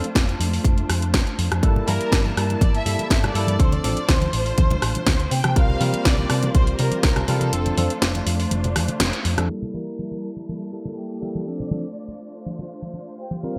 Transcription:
Already playing: string section A3 D4 F4 C5
0.04 muted picked electric bass stroke, closed hi-hat
0.15 picked electric bass F1, kick, snare, closed hi-hat
0.29 closed hi-hat
0.40 picked electric bass F2, open hi-hat
0.53 open hi-hat
0.64 picked electric bass F1, kick, closed hi-hat
0.78 closed hi-hat
0.89 picked electric bass F2, cross-stick, open hi-hat
1.02 closed hi-hat
1.14 picked electric bass F1, kick, snare, closed hi-hat
1.27 closed hi-hat
1.39 picked electric bass F2, open hi-hat
1.52 picked electric bass F2, cross-stick, closed hi-hat
1.63 picked electric bass G1, tine electric piano G3 A#3 E4 A4, string section G3 A#3 E4 A5, kick, closed hi-hat, muted conga
1.76 low conga
1.86 picked electric bass G2, tine electric piano G3 A#3 E4 A#4, violin section A#4, open hi-hat, high conga
2.00 muted picked electric bass stroke, closed hi-hat
2.12 picked electric bass G1, kick, snare, closed hi-hat, muted conga
2.26 high conga
2.37 picked electric bass G2, cross-stick, open hi-hat
2.50 closed hi-hat, muted conga
2.61 picked electric bass G1, violin section D5, kick, closed hi-hat, high conga
2.75 violin section E5, closed hi-hat
2.85 picked electric bass G2, tine electric piano G3 A#3 E4 A4, open hi-hat, low conga
2.99 muted picked electric bass stroke, closed hi-hat, muted conga, high conga
3.10 picked electric bass G1, violin section E5, kick, snare, closed hi-hat
3.24 violin section D5, cross-stick, closed hi-hat, low conga
3.35 picked electric bass G2, tine electric piano G3 A#3 E4 A4, open hi-hat, muted conga
3.47 picked electric bass G2, closed hi-hat, high conga
3.59 picked electric bass D2, tine electric piano F3 C4 D4 A4, string section A3 D4 F4 C5, violin section C5, kick, closed hi-hat
3.72 violin section D5, closed hi-hat, low conga
3.84 picked electric bass A1, tine electric piano F3 C4 D4 A4, open hi-hat, muted conga, high conga
3.97 closed hi-hat
4.09 picked electric bass D2, violin section C5, kick, snare, closed hi-hat
4.22 closed hi-hat, muted conga, high conga
4.33 picked electric bass A1, open hi-hat
4.46 open hi-hat
4.58 picked electric bass D2, kick, closed hi-hat, high conga
4.70 closed hi-hat, muted conga, low conga
4.82 picked electric bass A1, cross-stick, open hi-hat
4.95 closed hi-hat, high conga, low conga
5.07 picked electric bass D2, kick, snare, closed hi-hat, muted conga
5.20 closed hi-hat
5.31 picked electric bass C3, string section A#3 F4 G4, violin section G5, open hi-hat
5.44 picked electric bass C3, cross-stick, closed hi-hat, high conga
5.55 picked electric bass C2, tine electric piano G3 C4 F4 A#4, violin section F5, kick, closed hi-hat, muted conga
5.70 low conga
5.80 picked electric bass C3, tine electric piano G3 C4 F4 A#4, open hi-hat, high conga
5.93 muted picked electric bass stroke, closed hi-hat, muted conga
6.05 picked electric bass C2, violin section D5, kick, snare, closed hi-hat
6.18 high conga
6.30 picked electric bass C3, cross-stick, open hi-hat
6.43 closed hi-hat, muted conga
6.55 picked electric bass C2, violin section C5, kick, closed hi-hat, high conga
6.67 closed hi-hat
6.79 picked electric bass C3, tine electric piano G3 C4 F4 A#4, violin section A#4, open hi-hat, muted conga, low conga
6.91 muted picked electric bass stroke, closed hi-hat, high conga
7.03 picked electric bass C2, violin section A#4, kick, snare, closed hi-hat
7.16 cross-stick, closed hi-hat, low conga
7.28 picked electric bass C3, tine electric piano G3 C4 F4 A#4, violin section A4, open hi-hat, muted conga
7.41 picked electric bass C3, closed hi-hat, high conga
7.53 picked electric bass F1, tine electric piano F3 C4 D4 A4, string section A3 D4, closed hi-hat
7.66 closed hi-hat, muted conga, low conga
7.77 picked electric bass F2, tine electric piano F3 C4 D4 A4, open hi-hat, high conga
7.90 muted picked electric bass stroke, closed hi-hat
8.02 picked electric bass F1, snare, closed hi-hat
8.15 closed hi-hat, muted conga, high conga
8.26 picked electric bass F2, open hi-hat
8.40 open hi-hat
8.51 picked electric bass F1, closed hi-hat, muted conga, high conga
8.64 closed hi-hat, low conga
8.76 picked electric bass F2, cross-stick, open hi-hat
8.88 muted picked electric bass stroke, closed hi-hat, high conga, low conga
9.00 picked electric bass F1, snare, closed hi-hat, muted conga
9.13 closed hi-hat
9.25 picked electric bass F2, open hi-hat
9.37 picked electric bass F2, tine electric piano F3 C4 D4 A4, cross-stick, closed hi-hat, muted conga, high conga
9.49 tine electric piano G3 A#3 E4 A4, string section G3 A#3 E4 A5, crash, muted conga
9.62 low conga
9.73 tine electric piano G3 A#3 E4 A#4, violin section A#4, high conga
9.99 muted conga
10.12 high conga
10.37 muted conga
10.48 violin section A4, high conga
10.72 tine electric piano G3 A#3 E4 A4
10.85 muted conga, high conga
10.97 violin section G4
11.21 tine electric piano G3 A#3 E4 A4, muted conga
11.35 high conga
11.46 tine electric piano F3 C4 D4 A4, string section A3 D4 F4 C5, violin section D5
11.60 low conga
11.71 tine electric piano F3 C4 D4 A4, muted conga, high conga
12.08 muted conga, high conga
12.21 shaker
12.46 high conga, shaker
12.59 muted conga
12.70 shaker
12.82 high conga
12.94 muted conga
13.19 string section A#3 G4, violin section G5, shaker
13.31 high conga
13.43 tine electric piano G3 C4 F4 A#4, violin section F5, muted conga, shaker

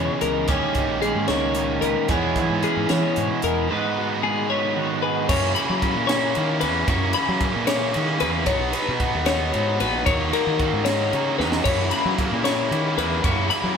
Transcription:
Already playing: clean electric guitar B2 C#3 G#3 B3 E4 B4 C#5, overdriven electric guitar C#3 E3 G#3 C#4 G#4
0.21 fingered electric bass C#2, clean electric guitar C#3 A#4, closed hi-hat
0.47 fingered electric bass D#2, overdriven electric guitar D#3 A#3 C#4 G4, clean electric guitar D#3 G#4 C#5, kick, closed hi-hat
0.75 fingered electric bass C#2, clean electric guitar D#4, kick, closed hi-hat
0.89 fingered electric bass A#1
1.02 clean electric guitar G#3 C#4 G#4, closed hi-hat
1.15 fingered electric bass G#2
1.28 fingered electric bass C#2, clean electric guitar A#4 C#5, snare, closed hi-hat
1.55 clean electric guitar A#2, closed hi-hat
1.59 clean electric guitar D#4
1.81 fingered electric bass C#2, clean electric guitar A#4 B4, closed hi-hat
2.09 fingered electric bass E2, overdriven electric guitar E3 G#3 B3, clean electric guitar E3 G#4 C#5, kick, closed hi-hat
2.13 overdriven electric guitar E4
2.36 fingered electric bass B1, clean electric guitar E4, kick, closed hi-hat
2.50 fingered electric bass G#2
2.63 clean electric guitar G#3 C#4 G#4, closed hi-hat
2.77 fingered electric bass G#2
2.89 fingered electric bass E3, clean electric guitar G#4 C#5, snare, closed hi-hat
3.16 fingered electric bass G#2, clean electric guitar B2 E4, closed hi-hat
3.42 fingered electric bass E2, clean electric guitar A#4, closed hi-hat
3.46 clean electric guitar G#4
3.67 overdriven electric guitar G#2 D#3 G#3 B3, clean electric guitar B4
3.72 clean electric guitar G#2 B4, overdriven electric guitar D#4
3.98 clean electric guitar F#4
4.23 clean electric guitar G#3 G#4
4.50 clean electric guitar B4 C#5
4.76 clean electric guitar D#3 F#4
5.03 clean electric guitar G#4 B4
5.29 overdriven electric guitar F#2 C#3 E3 A#3, fingered electric bass F#2, clean electric guitar C#5, kick, crash
5.33 overdriven electric guitar C#4
5.54 overdriven electric guitar E3 A#3 C#4, clean electric guitar B5, ride
5.70 fingered electric bass F#3
5.81 overdriven electric guitar C#3 E3 A#3 C#4, kick, ride
5.96 fingered electric bass A#2
6.07 overdriven electric guitar A#3 C#4, clean electric guitar C#5, snare, ride
6.13 overdriven electric guitar E3
6.34 overdriven electric guitar C#3 E3 A#3 C#4, fingered electric bass D#3, ride
6.61 fingered electric bass E2, overdriven electric guitar A#3 C#4, clean electric guitar B4, ride
6.66 overdriven electric guitar E3
6.86 overdriven electric guitar F#2 C#3 E3 A#3 C#4, fingered electric bass F#2, clean electric guitar C#5, kick, ride
7.13 overdriven electric guitar A#3 C#4, clean electric guitar B5, ride
7.17 overdriven electric guitar E3
7.29 fingered electric bass F#3
7.40 overdriven electric guitar C#3 E3 A#3 C#4, kick, ride
7.56 fingered electric bass A#2
7.66 overdriven electric guitar E3 A#3 C#4, clean electric guitar C#5, snare, ride
7.91 overdriven electric guitar C#3 E3 A#3 C#4, ride
7.96 fingered electric bass D#3
8.18 fingered electric bass E2, overdriven electric guitar E3 A#3 C#4, clean electric guitar B4, ride
8.45 fingered electric bass B1, overdriven electric guitar B2 F#3 B3 D#4, clean electric guitar C#5, kick, ride
8.72 overdriven electric guitar F#3 B3 D#4, clean electric guitar B4, ride
8.88 fingered electric bass B2
8.99 overdriven electric guitar B2 F#3 B3 D#4, kick, ride
9.15 fingered electric bass D#2
9.25 overdriven electric guitar B3 D#4, clean electric guitar C#5, snare, ride
9.29 overdriven electric guitar F#3
9.51 fingered electric bass G#2, overdriven electric guitar B2 F#3 B3 D#4, ride
9.78 fingered electric bass A#1, overdriven electric guitar F#3 B3 D#4, clean electric guitar B4, ride
10.04 fingered electric bass D#2, overdriven electric guitar D#3 F#3 A#3 D#4, clean electric guitar C#5, kick, ride
10.31 overdriven electric guitar F#3 A#3 D#4, clean electric guitar A#4, ride
10.47 fingered electric bass D#3
10.59 overdriven electric guitar D#3 F#3 A#3 D#4, kick, ride
10.73 fingered electric bass G#2
10.85 overdriven electric guitar A#3 D#4, clean electric guitar C#5, snare, ride
10.89 overdriven electric guitar F#3
11.12 fingered electric bass C#3, overdriven electric guitar D#3 F#3 A#3 D#4, ride
11.38 fingered electric bass E2, overdriven electric guitar F#3 A#3 D#4, clean electric guitar B4, snare
11.52 snare
11.64 fingered electric bass F#2, overdriven electric guitar F#2 C#3 E3, clean electric guitar C#5, kick, crash, ride
11.68 overdriven electric guitar A#3 E4
11.90 overdriven electric guitar E3 A#3 E4, clean electric guitar B5, ride
12.05 fingered electric bass F#3
12.15 overdriven electric guitar C#3 E3 A#3, kick, ride
12.19 overdriven electric guitar E4
12.32 fingered electric bass A#2
12.41 overdriven electric guitar E3 A#3 E4, clean electric guitar C#5, ride
12.46 snare
12.68 overdriven electric guitar C#3 E3 A#3 E4, fingered electric bass D#3
12.72 ride
12.95 fingered electric bass E2, overdriven electric guitar A#3 E4, clean electric guitar B4, ride
12.99 overdriven electric guitar E3
13.21 overdriven electric guitar F#2 C#3 E3 A#3 E4, fingered electric bass F#2, clean electric guitar C#5, kick, ride
13.48 overdriven electric guitar E3 A#3 E4, clean electric guitar B5, ride
13.64 fingered electric bass F#3

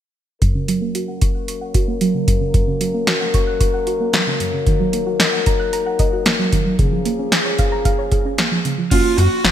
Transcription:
0.42 synth arpeggio sound F#2, french horn section F#3 A#3 C#4 A#4, kick, closed hi-hat
0.55 synth arpeggio sound C#3
0.68 synth arpeggio sound F#3, closed hi-hat
0.82 synth arpeggio sound A#3
0.95 synth arpeggio sound F#4, closed hi-hat
1.08 synth arpeggio sound F#5
1.21 synth arpeggio sound C#6, kick, closed hi-hat
1.35 synth arpeggio sound F#6
1.48 synth arpeggio sound C#6, closed hi-hat
1.61 synth arpeggio sound F#5
1.74 synth arpeggio sound F#4, kick, closed hi-hat
1.88 synth arpeggio sound A#3
2.01 synth arpeggio sound F#3, closed hi-hat
2.14 synth arpeggio sound C#3
2.28 synth arpeggio sound F#2, kick, closed hi-hat
2.41 synth arpeggio sound C#3
2.54 synth arpeggio sound F#2, kick, closed hi-hat
2.67 synth arpeggio sound C#3
2.81 synth arpeggio sound F#3, closed hi-hat
2.94 synth arpeggio sound A#3
3.07 synth arpeggio sound F#4, snare, closed hi-hat
3.21 synth arpeggio sound F#5
3.34 synth arpeggio sound C#6, kick, closed hi-hat
3.47 synth arpeggio sound F#6
3.60 synth arpeggio sound C#6, kick, closed hi-hat
3.74 synth arpeggio sound F#5
3.87 synth arpeggio sound F#4, closed hi-hat
4.00 synth arpeggio sound A#3
4.13 synth arpeggio sound F#3, snare, closed hi-hat
4.27 synth arpeggio sound C#3
4.40 synth arpeggio sound F#2, closed hi-hat
4.54 synth arpeggio sound C#3
4.67 synth arpeggio sound D#3, french horn section D#4, kick, closed hi-hat
4.80 synth arpeggio sound F#3
4.93 synth arpeggio sound A#3, closed hi-hat
5.06 synth arpeggio sound F#4
5.20 synth arpeggio sound D#5, snare, closed hi-hat
5.33 synth arpeggio sound F#5
5.46 synth arpeggio sound A#5, kick, closed hi-hat
5.60 synth arpeggio sound F#6
5.73 synth arpeggio sound A#5, closed hi-hat
5.86 synth arpeggio sound F#5
5.99 synth arpeggio sound D#5, kick, closed hi-hat
6.13 synth arpeggio sound F#4
6.26 synth arpeggio sound A#3, snare, closed hi-hat
6.39 synth arpeggio sound F#3
6.52 synth arpeggio sound D#3, kick, closed hi-hat
6.66 synth arpeggio sound F#3
6.79 synth arpeggio sound C#3, french horn section F3 A#3 C#4 G#4, kick, closed hi-hat
6.92 synth arpeggio sound F3
7.05 synth arpeggio sound A#3, closed hi-hat
7.19 synth arpeggio sound C#4
7.32 synth arpeggio sound G#4, snare, closed hi-hat
7.45 synth arpeggio sound C#5
7.59 synth arpeggio sound F5, kick, closed hi-hat
7.72 synth arpeggio sound A#5
7.85 synth arpeggio sound F5, kick, closed hi-hat
7.99 synth arpeggio sound C#5
8.12 synth arpeggio sound G#4, kick, closed hi-hat
8.25 synth arpeggio sound C#4
8.38 synth arpeggio sound A#3, snare, closed hi-hat
8.52 synth arpeggio sound F3
8.65 synth arpeggio sound C#3, closed hi-hat
8.78 synth arpeggio sound F3
8.91 analog synth bass F#1, synth keys A#3 C#4 F#4, lead electric guitar F4, kick, closed hi-hat, crash
9.18 analog synth bass F#2, lead electric guitar F#4, closed hi-hat
9.44 analog synth bass F#1, snare, closed hi-hat

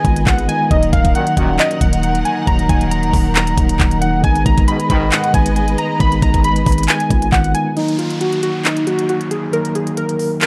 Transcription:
Already playing: tine electric piano D#3 G#3 B3 D#4, string section G#3 G#4 B4 D#5, synth keys G#5
0.03 808-style bass G#1, tine electric piano D#3 G#3 B3, kick, closed hi-hat
0.07 tine electric piano F4
0.16 closed hi-hat
0.27 808-style bass G#1, synth keys F#5, kick, clap, closed hi-hat
0.38 closed hi-hat
0.46 tine electric piano D#3 G#3 B3, synth keys G#5, closed hi-hat
0.51 tine electric piano D#4
0.69 808-style bass D#1, tine electric piano D#3 F#3 A#3, string section D#3 D#4 A#4 F#5, synth keys D#5, kick, closed hi-hat
0.73 tine electric piano D#4
0.83 closed hi-hat
0.93 808-style bass D#1, synth keys F5, kick, closed hi-hat
1.05 kick, closed hi-hat
1.15 brass ensemble F#2 A#2 D#3, synth keys F#5, closed hi-hat
1.27 closed hi-hat
1.37 808-style bass D#1, brass ensemble F#2 A#2 D#3, synth keys F#5, kick, closed hi-hat
1.59 synth keys D#5, clap, closed hi-hat
1.71 closed hi-hat
1.79 808-style bass D#1, tine electric piano D#3 F#3 A#3, synth keys F#5, kick, closed hi-hat
1.83 tine electric piano D#4
1.93 closed hi-hat
2.03 synth keys F#5, closed hi-hat
2.15 closed hi-hat
2.25 synth keys G#5, closed hi-hat
2.45 808-style bass D#1, tine electric piano D#3 F#3 A#3, synth keys A#5, kick, closed hi-hat
2.49 tine electric piano D#4
2.59 closed hi-hat
2.69 808-style bass D#1, synth keys G#5, kick, closed hi-hat
2.81 closed hi-hat
2.91 synth keys A#5, closed hi-hat
3.03 closed hi-hat
3.13 808-style bass D#1, kick, open hi-hat
3.36 synth keys A#5, clap, closed hi-hat
3.47 closed hi-hat
3.56 808-style bass D#1, tine electric piano D#3 F#3 A#3, kick, closed hi-hat
3.60 tine electric piano D#4
3.69 closed hi-hat
3.80 808-style bass D#1, kick, clap, closed hi-hat
3.91 closed hi-hat
3.99 tine electric piano D#3 F#3 A#3, synth keys F#5, closed hi-hat
4.04 tine electric piano D#4
4.22 808-style bass G#1, tine electric piano D#3 G#3 B3, string section G#3 G#4 B4 D#5, synth keys G#5, kick, closed hi-hat
4.26 tine electric piano D#4
4.35 closed hi-hat
4.46 808-style bass G#1, synth keys A#5, kick, closed hi-hat
4.58 kick, closed hi-hat
4.68 brass ensemble G#2 B2 D#3, synth keys B5, closed hi-hat
4.80 closed hi-hat
4.90 808-style bass G#1, brass ensemble G#2 B2 D#3, synth keys B5, kick, closed hi-hat
5.12 synth keys F#5, clap, closed hi-hat
5.24 closed hi-hat
5.32 808-style bass G#1, tine electric piano D#3 G#3 B3, synth keys G#5, kick, closed hi-hat
5.36 tine electric piano D#4
5.46 closed hi-hat
5.56 synth keys G#5, closed hi-hat
5.68 closed hi-hat
5.78 synth keys A#5, closed hi-hat
5.99 808-style bass G#1, tine electric piano D#3 G#3 B3, synth keys B5, kick, closed hi-hat
6.03 tine electric piano D#4
6.12 closed hi-hat
6.22 808-style bass G#1, synth keys A#5, kick, closed hi-hat
6.34 kick, closed hi-hat
6.44 synth keys B5, closed hi-hat
6.56 closed hi-hat
6.66 808-style bass G#1, kick, closed hi-hat, open hi-hat
6.72 closed hi-hat
6.78 closed hi-hat
6.83 closed hi-hat
6.88 synth keys G#5, clap, closed hi-hat
7.00 closed hi-hat
7.09 808-style bass G#1, tine electric piano D#3 G#3 B3, kick, closed hi-hat
7.13 tine electric piano F4
7.22 closed hi-hat
7.32 808-style bass G#1, synth keys F#5, kick, clap, closed hi-hat
7.44 closed hi-hat
7.52 tine electric piano D#3 G#3 B3, synth keys G#5, closed hi-hat
7.56 tine electric piano D#4
7.75 tine electric piano D#3 F#3 A#3, synth keys D#4, closed hi-hat, downlifter
7.79 tine electric piano D#4
7.88 closed hi-hat
7.98 synth keys F4, closed hi-hat
8.10 closed hi-hat
8.21 synth keys F#4, closed hi-hat
8.32 closed hi-hat
8.43 synth keys F#4, closed hi-hat
8.65 synth keys D#4, clap, closed hi-hat
8.77 closed hi-hat
8.85 tine electric piano D#3 F#3 A#3, synth keys F#4, closed hi-hat
8.89 tine electric piano D#4
8.99 closed hi-hat
9.09 synth keys F#4, closed hi-hat
9.21 closed hi-hat
9.31 synth keys G#4, closed hi-hat
9.51 tine electric piano D#3 F#3 A#3, synth keys A#4, closed hi-hat
9.55 tine electric piano D#4
9.65 closed hi-hat
9.75 synth keys G#4, closed hi-hat
9.87 closed hi-hat
9.97 synth keys A#4, closed hi-hat
10.09 closed hi-hat
10.19 open hi-hat
10.41 synth keys A#4, clap, closed hi-hat

